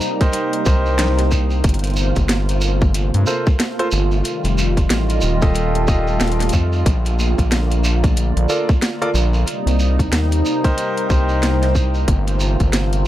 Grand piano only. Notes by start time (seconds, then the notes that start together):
0.21 D#4 G4 A#4 C5
0.66 D#4 G4 A#4 C5
3.27 F4 A4 A#4 C5
3.79 F4 A4 A#4 C5
5.42 F4 G4 A4 D#5
5.88 F4 G4 A4 D#5
8.49 F4 A4 A#4 D5
9.02 F4 A4 A#4 D5
10.64 D#4 G4 A#4 C5
11.10 D#4 G4 A#4 C5